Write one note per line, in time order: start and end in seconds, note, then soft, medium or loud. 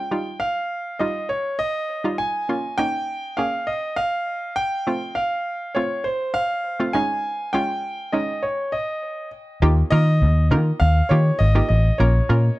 0.00 0.42 G5 medium
0.11 0.81 G3 medium
0.11 0.81 D#4 medium
0.11 0.82 F4 medium
0.40 1.02 F5 loud
0.99 1.82 G3 medium
0.99 1.82 D#4 medium
0.99 1.82 F4 medium
0.99 1.28 D#5 medium
1.29 1.57 C#5 medium
1.59 2.15 D#5 loud
2.04 2.39 G3 medium
2.04 2.39 D#4 medium
2.04 2.40 F4 medium
2.18 2.80 G#5 loud
2.49 2.72 A#3 medium
2.49 2.73 C#4 medium
2.49 2.73 F4 medium
2.78 3.25 A#3 medium
2.78 3.25 C#4 medium
2.78 3.25 D#4 medium
2.78 3.40 G5 loud
3.37 4.31 A#3 medium
3.37 4.31 C#4 medium
3.37 4.32 G#4 medium
3.37 3.68 F5 loud
3.67 3.98 D#5 medium
3.96 4.53 F5 loud
4.56 5.18 G5 loud
4.87 5.57 A3 medium
4.87 5.57 C4 medium
4.87 5.57 F4 medium
5.15 5.77 F5 loud
5.75 6.57 A3 medium
5.75 6.57 C4 medium
5.75 6.58 F4 medium
5.75 6.06 C#5 medium
6.04 6.36 C5 medium
6.34 6.96 F5 loud
6.80 6.95 A3 medium
6.80 6.95 C4 medium
6.80 6.95 F4 medium
6.93 7.42 G#3 medium
6.93 7.42 C#4 medium
6.93 7.42 D#4 medium
6.93 7.50 G#5 loud
7.53 8.01 G#3 medium
7.53 8.01 C#4 medium
7.53 8.01 F4 medium
7.53 8.15 G5 loud
8.12 9.06 G#3 medium
8.12 9.07 C#4 medium
8.12 9.07 D#4 medium
8.12 8.44 D#5 medium
8.43 8.74 C#5 medium
8.72 9.28 D#5 medium
9.62 9.82 D#2 loud
9.62 9.85 A#3 medium
9.62 9.85 D#4 medium
9.62 9.86 F4 medium
9.62 9.86 G4 loud
9.90 10.23 D#3 loud
9.90 10.38 A#3 medium
9.90 10.38 D#4 medium
9.90 10.38 F4 medium
9.90 10.39 A#4 medium
9.90 10.47 D#5 loud
10.22 10.53 D#2 loud
10.51 10.71 D#3 loud
10.51 10.98 A#3 medium
10.51 10.98 D#4 medium
10.51 10.98 F4 medium
10.51 10.98 A#4 medium
10.80 11.00 D#2 loud
10.80 11.11 F5 loud
11.09 11.30 D#3 loud
11.09 11.46 A#3 medium
11.09 11.46 D#4 medium
11.09 11.46 F4 medium
11.09 11.46 G4 medium
11.09 11.41 C#5 loud
11.39 11.60 G#1 loud
11.39 11.67 D#5 loud
11.55 11.90 A#3 medium
11.55 11.90 D#4 medium
11.55 11.90 F4 medium
11.55 11.90 G4 medium
11.69 11.89 A1 medium
11.69 11.97 D#5 medium
11.98 12.19 A#1 loud
11.98 12.23 A#3 medium
11.98 12.23 C#4 medium
11.98 12.23 F4 medium
11.98 12.23 A#4 medium
11.98 12.54 C#5 medium
12.29 12.49 A#2 loud
12.29 12.59 A#3 medium
12.29 12.59 C#4 medium
12.29 12.59 F4 medium
12.29 12.59 A#4 medium